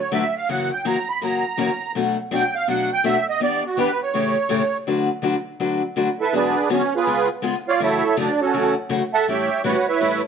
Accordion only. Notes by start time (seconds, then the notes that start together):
0.00 C#5
0.14 E5
0.37 F5
0.50 F#5
0.73 G5
0.87 A#5
1.09 B5
1.24 A#5
2.34 G5
2.55 F5
2.69 F#5
2.93 G5
3.06 E5
3.29 D#5
3.43 D5
3.67 F#4
3.79 B4
4.03 C#5
6.21 E4 A4 B4 E5
6.35 D4 G#4 B4 D5
6.73 C#4 C#5
6.96 B3 F4 G#4 B4
7.68 F4 C#5 D5 F5
7.83 E4 A4 C#5 E5
8.19 D4 D5
8.41 C#4 F#4 A4 C#5
9.14 A4 E5 F#5 A5
9.29 G4 C#5 E5 G5
9.65 F#4 B4 C#5 F#5
9.88 E4 B4 C#5 E5